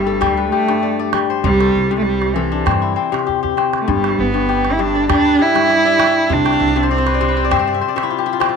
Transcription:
0.00 0.18 G1 medium
0.00 0.67 G2 medium
0.00 0.50 G3 medium
0.00 0.43 C4 medium
0.00 0.52 G4 medium
0.00 0.94 E5 medium
0.06 1.38 A4 medium
0.21 0.49 D2 medium
0.21 1.12 G3 medium
0.21 calabash thump medium
0.21 calabash click medium
0.37 1.36 B4 medium
0.51 1.09 A3 medium
0.51 1.93 G4 medium
0.51 calabash click soft
0.68 1.49 G2 medium
0.68 calabash click soft
0.83 0.99 D5 medium
0.83 calabash click soft
0.99 2.10 D5 medium
1.13 1.49 G3 medium
1.13 calabash click medium
1.30 2.49 C5 medium
1.44 1.72 C2 loud
1.44 1.90 C3 medium
1.44 1.95 G3 loud
1.44 calabash thump medium
1.60 2.35 A4 medium
1.60 calabash click soft
1.75 2.62 C2 medium
1.75 calabash click soft
1.91 2.35 C3 medium
1.91 calabash click soft
1.98 2.04 A3 medium
2.03 2.35 G3 medium
2.03 calabash click soft
2.22 calabash click soft
2.33 3.11 C3 medium
2.33 2.95 E3 medium
2.33 3.67 A4 medium
2.33 calabash click soft
2.52 4.20 D4 medium
2.66 2.94 G2 medium
2.66 2.96 C4 medium
2.66 calabash thump medium
2.66 calabash click medium
2.82 4.39 E4 medium
2.82 calabash click soft
2.96 3.57 C4 medium
2.96 calabash click soft
3.12 3.93 C3 medium
3.12 calabash click soft
3.27 3.42 G4 medium
3.27 calabash thump soft
3.43 4.48 G4 medium
3.43 calabash thump soft
3.57 5.31 C4 medium
3.57 calabash click soft
3.73 calabash click soft
3.81 3.89 A3 medium
3.88 4.16 G1 medium
3.88 4.33 G2 medium
3.88 4.21 G3 medium
3.88 calabash thump medium
4.04 4.79 E5 medium
4.04 calabash click soft
4.19 5.05 G1 medium
4.19 4.74 B3 medium
4.34 4.78 G2 medium
4.34 calabash click soft
4.49 5.39 G4 medium
4.49 calabash click soft
4.65 calabash click soft
4.72 4.82 E4 medium
4.79 5.54 G2 medium
4.79 5.10 D4 medium
4.79 5.83 E5 medium
4.79 calabash click soft
4.95 6.27 A4 medium
5.09 5.37 D2 medium
5.09 5.98 G3 medium
5.09 5.43 D4 loud
5.09 calabash thump medium
5.09 calabash click medium
5.25 6.35 B4 medium
5.39 6.34 E4 loud
5.39 6.80 G4 medium
5.39 calabash click soft
5.55 6.35 G2 medium
5.55 calabash click medium
5.69 5.85 D5 medium
5.69 calabash click soft
5.85 6.90 D5 medium
5.99 6.35 G3 medium
5.99 calabash click medium
6.29 6.58 C2 loud
6.29 6.75 C3 medium
6.29 6.92 D4 loud
6.29 calabash thump medium
6.45 7.38 G5 medium
6.45 calabash click medium
6.53 6.67 F5 medium
6.60 7.47 C2 medium
6.60 6.76 E5 medium
6.68 7.57 F5 medium
6.76 7.20 C3 medium
6.76 7.51 E5 medium
6.76 calabash click soft
6.83 6.98 C5 medium
6.91 7.78 C4 medium
6.91 7.14 D5 medium
6.91 calabash click soft
6.98 7.20 C5 medium
7.06 7.27 B4 medium
7.06 calabash click soft
7.14 7.44 D5 medium
7.21 7.95 C3 medium
7.21 7.36 C5 medium
7.21 calabash click soft
7.29 7.57 B4 medium
7.37 7.59 C5 medium
7.44 7.67 D5 medium
7.51 7.78 G2 medium
7.51 8.40 C4 medium
7.51 7.74 E5 medium
7.51 calabash thump medium
7.51 calabash click medium
7.59 7.81 C5 medium
7.67 7.88 D5 medium
7.74 7.96 E5 medium
7.81 8.56 C5 medium
7.81 calabash click soft
7.88 8.56 D5 medium
7.96 8.56 C3 medium
7.96 8.17 E5 medium
7.96 calabash click soft
8.03 8.26 E4 medium
8.11 8.32 F4 medium
8.11 calabash click soft
8.18 8.40 G4 medium
8.26 8.55 E4 medium
8.33 8.48 F4 medium
8.40 8.56 C4 medium
8.40 8.56 G4 medium
8.40 calabash click medium
8.49 8.56 F4 medium

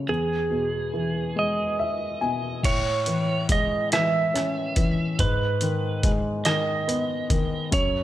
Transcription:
0.00 0.11 C#3 soft
0.00 0.11 A3 soft
0.00 0.11 C#4 soft
0.08 2.60 E2 medium
0.08 1.75 G#4 medium
0.51 2.17 B2 soft
0.93 2.60 E3 soft
1.36 2.60 G#3 medium
1.36 2.69 D#5 medium
1.79 2.19 E5 medium
2.21 2.63 B2 soft
2.21 2.61 G#5 medium
2.63 5.15 A2 medium
2.63 3.46 C#5 medium
2.63 kick medium
2.63 closed hi-hat medium
2.63 crash medium
3.06 3.91 E3 soft
3.06 closed hi-hat medium
3.49 5.15 G#3 soft
3.49 3.93 D#5 medium
3.49 kick medium
3.49 closed hi-hat medium
3.92 4.75 E3 medium
3.92 5.24 E5 medium
3.92 cross-stick medium
3.92 closed hi-hat medium
4.34 5.17 C#4 soft
4.34 cross-stick soft
4.34 closed hi-hat soft
4.76 5.18 E3 soft
4.76 kick medium
4.76 closed hi-hat soft
5.19 7.69 G#2 medium
5.19 6.11 B4 medium
5.19 kick medium
5.19 closed hi-hat medium
5.61 6.44 D#3 soft
5.61 closed hi-hat medium
6.03 7.69 G#3 medium
6.03 kick medium
6.03 closed hi-hat medium
6.45 7.28 D#3 medium
6.45 7.73 D#5 medium
6.45 cross-stick medium
6.45 closed hi-hat medium
6.88 7.70 B3 medium
6.88 closed hi-hat medium
7.30 7.71 D#3 soft
7.30 kick medium
7.30 closed hi-hat medium
7.71 8.04 F#2 medium
7.71 8.04 C#5 medium
7.71 kick loud
7.71 closed hi-hat medium

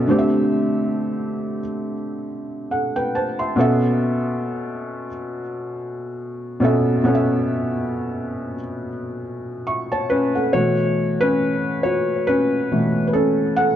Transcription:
0.00 0.10 B2 medium
0.00 0.10 B3 medium
0.00 0.11 C#4 medium
0.00 0.10 A4 medium
0.00 0.11 E5 medium
0.07 1.58 D3 medium
0.07 1.59 A3 medium
0.07 1.60 C4 medium
0.07 1.60 G4 medium
0.12 0.18 D5 medium
0.19 1.64 E5 loud
2.71 2.94 A4 medium
2.71 2.94 F#5 medium
2.96 3.13 B4 medium
2.96 3.13 G5 medium
3.15 3.38 C5 medium
3.15 3.38 A5 medium
3.39 3.59 E5 medium
3.39 3.80 C6 medium
3.56 5.07 B2 medium
3.56 5.07 B3 medium
3.56 5.08 C#4 medium
3.56 5.08 A4 medium
3.60 5.09 E5 medium
6.60 6.98 B2 medium
6.60 6.99 B3 medium
6.60 6.99 C#4 medium
6.60 7.00 A4 medium
6.65 7.01 E5 medium
7.04 8.54 B2 medium
7.04 8.55 B3 medium
7.04 8.56 C#4 medium
7.04 8.56 A4 medium
7.08 7.14 C#5 medium
7.15 8.60 E5 medium
9.67 9.90 E5 soft
9.67 9.89 C#6 medium
9.92 10.32 C#5 medium
9.92 10.32 A5 medium
10.10 10.51 C#4 medium
10.10 10.54 B4 medium
10.35 10.76 A4 medium
10.35 10.76 F#5 medium
10.53 11.79 B2 soft
10.53 11.79 E3 soft
10.53 11.80 A3 medium
10.53 11.18 F#4 medium
10.53 11.23 C#5 loud
11.21 11.80 C#4 medium
11.21 11.85 B4 loud
11.83 12.24 F#4 medium
11.83 12.28 C#5 medium
12.27 13.04 C#4 medium
12.27 13.06 B4 loud
12.71 13.10 B2 soft
12.71 13.10 E3 soft
12.71 13.10 A3 medium
13.07 13.13 B4 medium
13.13 13.55 C#4 medium
13.13 13.57 A4 medium
13.56 13.68 A4 medium
13.56 13.66 F#5 medium

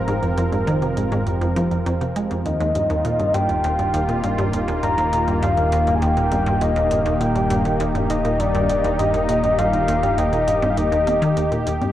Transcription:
0.00 2.43 F1 medium
0.00 2.46 F3 medium
0.00 4.51 C4 medium
0.00 2.45 G4 medium
0.00 3.28 A#4 medium
0.08 0.15 G#2 loud
0.08 closed hi-hat medium
0.23 0.34 F2 medium
0.23 closed hi-hat soft
0.38 0.45 F2 loud
0.38 closed hi-hat medium
0.52 0.60 G#2 medium
0.52 closed hi-hat soft
0.67 0.75 D#3 loud
0.67 closed hi-hat medium
0.82 0.94 C3 medium
0.82 closed hi-hat soft
0.97 1.02 G#2 medium
0.97 closed hi-hat medium
1.12 1.20 G#2 loud
1.12 closed hi-hat soft
1.12 high conga soft
1.27 1.38 F2 medium
1.27 closed hi-hat medium
1.41 1.49 F2 loud
1.41 closed hi-hat soft
1.56 1.68 F3 loud
1.56 closed hi-hat medium
1.56 high conga medium
1.71 1.79 F2 medium
1.71 closed hi-hat soft
1.86 1.94 F2 loud
1.86 closed hi-hat medium
2.01 2.12 C3 medium
2.01 closed hi-hat soft
2.16 2.20 G#3 medium
2.16 closed hi-hat medium
2.31 2.42 F2 medium
2.31 closed hi-hat soft
2.45 2.57 D#2 medium
2.45 11.92 D#3 medium
2.45 3.36 D#5 medium
2.45 closed hi-hat medium
2.60 2.68 D#2 loud
2.60 closed hi-hat soft
2.75 2.83 G2 medium
2.75 closed hi-hat medium
2.81 7.41 F4 medium
2.90 2.98 D#2 loud
2.90 closed hi-hat soft
3.03 3.16 A#2 medium
3.03 11.92 A#3 medium
3.03 closed hi-hat medium
3.20 3.24 G2 medium
3.20 closed hi-hat soft
3.34 3.42 G2 medium
3.34 3.63 G5 loud
3.34 closed hi-hat medium
3.49 3.61 D#2 medium
3.49 closed hi-hat soft
3.64 3.72 D#2 loud
3.64 4.20 G5 loud
3.64 closed hi-hat medium
3.70 11.92 G4 medium
3.79 3.87 G2 medium
3.79 closed hi-hat soft
3.94 4.02 D#2 loud
3.94 closed hi-hat medium
4.09 4.20 A#2 medium
4.09 closed hi-hat soft
4.24 4.28 G2 medium
4.24 closed hi-hat medium
4.38 4.46 G2 loud
4.38 closed hi-hat soft
4.53 4.65 D#2 medium
4.53 closed hi-hat medium
4.68 4.76 D#2 loud
4.68 closed hi-hat soft
4.83 4.91 G2 medium
4.83 5.39 A#5 loud
4.83 closed hi-hat medium
4.98 5.06 D#2 loud
4.98 closed hi-hat soft
5.13 5.24 A#2 medium
5.13 closed hi-hat medium
5.28 5.32 G2 medium
5.28 closed hi-hat soft
5.42 5.50 G2 loud
5.42 5.96 F5 loud
5.42 closed hi-hat medium
5.57 5.69 D#2 medium
5.57 closed hi-hat soft
5.72 5.80 D#2 loud
5.72 closed hi-hat medium
5.87 5.95 G2 medium
5.87 closed hi-hat soft
5.95 6.04 G#5 medium
6.02 6.10 D#2 loud
6.02 6.63 G5 loud
6.02 closed hi-hat medium
6.17 6.28 A#2 medium
6.17 closed hi-hat soft
6.32 6.36 G2 medium
6.32 closed hi-hat medium
6.32 high conga medium
6.46 6.54 G2 loud
6.46 closed hi-hat soft
6.61 6.73 D#2 medium
6.61 7.22 D#5 medium
6.61 closed hi-hat medium
6.76 6.84 D#2 loud
6.76 closed hi-hat soft
6.91 6.99 G2 medium
6.91 closed hi-hat medium
7.06 7.14 D#2 loud
7.06 closed hi-hat soft
7.21 7.32 A#2 medium
7.21 11.92 D#4 medium
7.21 7.80 G5 medium
7.21 closed hi-hat medium
7.35 7.40 G2 medium
7.35 closed hi-hat soft
7.50 7.58 G2 loud
7.50 closed hi-hat medium
7.65 7.77 D#2 medium
7.65 closed hi-hat soft
7.80 7.88 D#2 loud
7.80 closed hi-hat medium
7.95 8.03 G2 medium
7.95 closed hi-hat soft
8.10 8.18 D#2 loud
8.10 8.41 D#5 medium
8.10 closed hi-hat medium
8.25 8.36 A#2 medium
8.25 closed hi-hat soft
8.40 8.44 G2 medium
8.40 8.98 D5 loud
8.40 closed hi-hat medium
8.55 8.62 G2 loud
8.55 closed hi-hat soft
8.69 8.81 D#2 medium
8.69 closed hi-hat medium
8.84 8.92 D#2 loud
8.84 closed hi-hat soft
8.99 9.07 G2 medium
8.99 9.60 D#5 loud
8.99 closed hi-hat medium
9.14 9.21 D#2 loud
9.14 closed hi-hat soft
9.29 9.40 A#2 medium
9.29 closed hi-hat medium
9.44 9.48 G2 medium
9.44 closed hi-hat soft
9.58 9.66 G2 loud
9.58 10.19 F5 loud
9.58 closed hi-hat medium
9.73 9.85 D#2 medium
9.73 closed hi-hat soft
9.88 9.96 D#2 loud
9.88 closed hi-hat medium
10.03 10.11 G2 medium
10.03 closed hi-hat soft
10.18 10.25 D#2 loud
10.18 10.70 D#5 loud
10.18 closed hi-hat medium
10.33 10.44 A#2 medium
10.33 closed hi-hat soft
10.48 10.52 G2 medium
10.48 closed hi-hat medium
10.62 10.70 G2 loud
10.62 closed hi-hat soft
10.62 high conga medium
10.70 10.79 F5 medium
10.77 10.89 D#2 medium
10.77 11.66 D#5 loud
10.77 closed hi-hat medium
10.92 11.00 D#2 loud
10.92 closed hi-hat soft
11.07 11.15 A#3 medium
11.07 closed hi-hat medium
11.07 high conga medium
11.22 11.29 D#3 loud
11.22 closed hi-hat soft
11.37 11.41 D#2 medium
11.37 closed hi-hat medium
11.52 11.56 A#2 medium
11.52 closed hi-hat soft
11.66 11.78 D#2 medium
11.66 closed hi-hat medium
11.81 11.89 G2 medium
11.81 closed hi-hat soft
11.81 high conga medium

